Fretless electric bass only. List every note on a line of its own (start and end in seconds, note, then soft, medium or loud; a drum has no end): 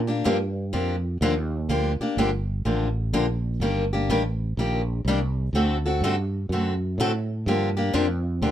0.00 0.23 A#2 medium
0.26 0.72 G2 medium
0.73 1.20 F2 medium
1.21 1.68 D#2 medium
1.69 1.97 D2 medium
2.00 muted fretless electric bass stroke soft
2.17 2.64 G1 medium
2.65 3.12 A1 medium
3.13 3.59 A#1 medium
3.60 4.07 G1 medium
4.09 4.56 A1 medium
4.57 5.04 A#1 medium
5.05 5.52 C2 medium
5.53 6.00 D2 medium
6.01 6.48 G2 medium
6.49 6.96 F#2 medium
6.98 7.45 A2 medium
7.46 7.93 G2 loud
7.94 8.41 F2 medium
8.42 8.51 D2 medium